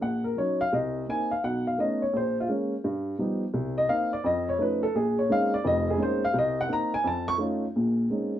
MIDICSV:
0, 0, Header, 1, 2, 480
1, 0, Start_track
1, 0, Key_signature, -5, "minor"
1, 0, Tempo, 351906
1, 978, Time_signature, 4, 2, 24, 8
1, 11452, End_track
2, 0, Start_track
2, 0, Title_t, "Upright piano"
2, 0, Program_c, 0, 0
2, 17, Note_on_c, 0, 34, 69
2, 31, Note_on_c, 0, 78, 90
2, 325, Note_off_c, 0, 78, 0
2, 331, Note_on_c, 0, 70, 73
2, 432, Note_off_c, 0, 34, 0
2, 494, Note_off_c, 0, 70, 0
2, 502, Note_on_c, 0, 54, 51
2, 520, Note_on_c, 0, 61, 48
2, 522, Note_on_c, 0, 73, 84
2, 523, Note_on_c, 0, 63, 60
2, 811, Note_off_c, 0, 73, 0
2, 827, Note_off_c, 0, 54, 0
2, 830, Note_on_c, 0, 77, 106
2, 836, Note_off_c, 0, 61, 0
2, 837, Note_off_c, 0, 63, 0
2, 984, Note_off_c, 0, 77, 0
2, 991, Note_on_c, 0, 36, 71
2, 1007, Note_on_c, 0, 75, 81
2, 1400, Note_off_c, 0, 36, 0
2, 1441, Note_off_c, 0, 75, 0
2, 1481, Note_on_c, 0, 58, 54
2, 1482, Note_on_c, 0, 60, 51
2, 1493, Note_on_c, 0, 63, 62
2, 1498, Note_on_c, 0, 80, 100
2, 1780, Note_off_c, 0, 80, 0
2, 1791, Note_on_c, 0, 77, 89
2, 1797, Note_off_c, 0, 58, 0
2, 1798, Note_off_c, 0, 60, 0
2, 1803, Note_off_c, 0, 63, 0
2, 1946, Note_off_c, 0, 77, 0
2, 1956, Note_on_c, 0, 35, 71
2, 1967, Note_on_c, 0, 78, 94
2, 2254, Note_off_c, 0, 78, 0
2, 2281, Note_on_c, 0, 77, 85
2, 2363, Note_off_c, 0, 35, 0
2, 2430, Note_on_c, 0, 57, 54
2, 2431, Note_off_c, 0, 77, 0
2, 2439, Note_on_c, 0, 59, 47
2, 2439, Note_on_c, 0, 61, 49
2, 2444, Note_on_c, 0, 63, 60
2, 2457, Note_on_c, 0, 75, 81
2, 2739, Note_off_c, 0, 75, 0
2, 2752, Note_off_c, 0, 57, 0
2, 2756, Note_off_c, 0, 59, 0
2, 2756, Note_off_c, 0, 61, 0
2, 2758, Note_on_c, 0, 73, 80
2, 2759, Note_off_c, 0, 63, 0
2, 2908, Note_on_c, 0, 34, 71
2, 2910, Note_off_c, 0, 73, 0
2, 2955, Note_on_c, 0, 72, 81
2, 3229, Note_off_c, 0, 72, 0
2, 3279, Note_on_c, 0, 65, 85
2, 3319, Note_off_c, 0, 34, 0
2, 3360, Note_off_c, 0, 65, 0
2, 3389, Note_on_c, 0, 56, 56
2, 3401, Note_on_c, 0, 61, 61
2, 3405, Note_on_c, 0, 58, 51
2, 3711, Note_off_c, 0, 56, 0
2, 3717, Note_off_c, 0, 61, 0
2, 3719, Note_off_c, 0, 58, 0
2, 3879, Note_on_c, 0, 43, 73
2, 4285, Note_off_c, 0, 43, 0
2, 4343, Note_on_c, 0, 53, 56
2, 4350, Note_on_c, 0, 59, 49
2, 4351, Note_on_c, 0, 63, 64
2, 4353, Note_on_c, 0, 55, 52
2, 4668, Note_off_c, 0, 53, 0
2, 4672, Note_off_c, 0, 59, 0
2, 4672, Note_off_c, 0, 63, 0
2, 4673, Note_off_c, 0, 55, 0
2, 4824, Note_on_c, 0, 36, 70
2, 5152, Note_on_c, 0, 75, 103
2, 5237, Note_off_c, 0, 36, 0
2, 5306, Note_off_c, 0, 75, 0
2, 5306, Note_on_c, 0, 60, 52
2, 5308, Note_on_c, 0, 58, 57
2, 5309, Note_on_c, 0, 77, 107
2, 5313, Note_on_c, 0, 63, 63
2, 5604, Note_off_c, 0, 77, 0
2, 5629, Note_off_c, 0, 60, 0
2, 5630, Note_off_c, 0, 58, 0
2, 5633, Note_off_c, 0, 63, 0
2, 5634, Note_on_c, 0, 74, 97
2, 5783, Note_on_c, 0, 41, 78
2, 5787, Note_off_c, 0, 74, 0
2, 5810, Note_on_c, 0, 75, 94
2, 6095, Note_off_c, 0, 75, 0
2, 6123, Note_on_c, 0, 73, 95
2, 6196, Note_off_c, 0, 41, 0
2, 6251, Note_on_c, 0, 53, 57
2, 6257, Note_on_c, 0, 57, 52
2, 6258, Note_on_c, 0, 63, 65
2, 6260, Note_on_c, 0, 61, 50
2, 6271, Note_off_c, 0, 73, 0
2, 6300, Note_on_c, 0, 71, 78
2, 6580, Note_off_c, 0, 71, 0
2, 6581, Note_off_c, 0, 53, 0
2, 6584, Note_off_c, 0, 57, 0
2, 6584, Note_off_c, 0, 63, 0
2, 6586, Note_off_c, 0, 61, 0
2, 6587, Note_on_c, 0, 69, 95
2, 6743, Note_off_c, 0, 69, 0
2, 6754, Note_on_c, 0, 34, 77
2, 6763, Note_on_c, 0, 68, 82
2, 7051, Note_off_c, 0, 68, 0
2, 7076, Note_on_c, 0, 73, 87
2, 7161, Note_off_c, 0, 34, 0
2, 7220, Note_on_c, 0, 56, 62
2, 7221, Note_on_c, 0, 58, 52
2, 7227, Note_off_c, 0, 73, 0
2, 7230, Note_on_c, 0, 60, 55
2, 7230, Note_on_c, 0, 61, 54
2, 7232, Note_on_c, 0, 63, 65
2, 7258, Note_on_c, 0, 77, 110
2, 7538, Note_off_c, 0, 77, 0
2, 7544, Note_off_c, 0, 56, 0
2, 7545, Note_off_c, 0, 58, 0
2, 7550, Note_off_c, 0, 60, 0
2, 7550, Note_off_c, 0, 61, 0
2, 7551, Note_off_c, 0, 63, 0
2, 7557, Note_on_c, 0, 74, 99
2, 7696, Note_on_c, 0, 41, 80
2, 7701, Note_on_c, 0, 29, 75
2, 7707, Note_off_c, 0, 74, 0
2, 7735, Note_on_c, 0, 75, 105
2, 8016, Note_off_c, 0, 75, 0
2, 8051, Note_on_c, 0, 68, 82
2, 8110, Note_off_c, 0, 41, 0
2, 8113, Note_off_c, 0, 29, 0
2, 8155, Note_on_c, 0, 58, 53
2, 8157, Note_on_c, 0, 63, 65
2, 8160, Note_on_c, 0, 60, 54
2, 8161, Note_on_c, 0, 56, 58
2, 8161, Note_on_c, 0, 61, 55
2, 8194, Note_off_c, 0, 68, 0
2, 8219, Note_on_c, 0, 72, 91
2, 8491, Note_off_c, 0, 58, 0
2, 8492, Note_off_c, 0, 63, 0
2, 8494, Note_off_c, 0, 56, 0
2, 8494, Note_off_c, 0, 60, 0
2, 8494, Note_off_c, 0, 61, 0
2, 8498, Note_off_c, 0, 72, 0
2, 8519, Note_on_c, 0, 77, 111
2, 8644, Note_on_c, 0, 36, 76
2, 8667, Note_off_c, 0, 77, 0
2, 8710, Note_on_c, 0, 75, 102
2, 8983, Note_off_c, 0, 75, 0
2, 9012, Note_on_c, 0, 78, 107
2, 9063, Note_off_c, 0, 36, 0
2, 9117, Note_on_c, 0, 58, 59
2, 9126, Note_on_c, 0, 60, 54
2, 9137, Note_on_c, 0, 63, 69
2, 9153, Note_off_c, 0, 78, 0
2, 9177, Note_on_c, 0, 82, 105
2, 9452, Note_off_c, 0, 58, 0
2, 9456, Note_off_c, 0, 60, 0
2, 9456, Note_off_c, 0, 82, 0
2, 9462, Note_off_c, 0, 63, 0
2, 9468, Note_on_c, 0, 80, 108
2, 9602, Note_on_c, 0, 41, 75
2, 9621, Note_off_c, 0, 80, 0
2, 9649, Note_on_c, 0, 81, 105
2, 9930, Note_on_c, 0, 85, 125
2, 9932, Note_off_c, 0, 81, 0
2, 10022, Note_off_c, 0, 41, 0
2, 10030, Note_off_c, 0, 85, 0
2, 10069, Note_on_c, 0, 57, 62
2, 10081, Note_on_c, 0, 61, 54
2, 10088, Note_on_c, 0, 63, 55
2, 10088, Note_on_c, 0, 65, 63
2, 10408, Note_off_c, 0, 57, 0
2, 10414, Note_off_c, 0, 61, 0
2, 10417, Note_off_c, 0, 63, 0
2, 10417, Note_off_c, 0, 65, 0
2, 10579, Note_on_c, 0, 46, 62
2, 10584, Note_on_c, 0, 34, 65
2, 10991, Note_off_c, 0, 46, 0
2, 10994, Note_off_c, 0, 34, 0
2, 11051, Note_on_c, 0, 60, 42
2, 11052, Note_on_c, 0, 61, 43
2, 11053, Note_on_c, 0, 56, 47
2, 11055, Note_on_c, 0, 58, 43
2, 11059, Note_on_c, 0, 63, 53
2, 11379, Note_off_c, 0, 60, 0
2, 11380, Note_off_c, 0, 56, 0
2, 11380, Note_off_c, 0, 61, 0
2, 11381, Note_off_c, 0, 58, 0
2, 11383, Note_off_c, 0, 63, 0
2, 11452, End_track
0, 0, End_of_file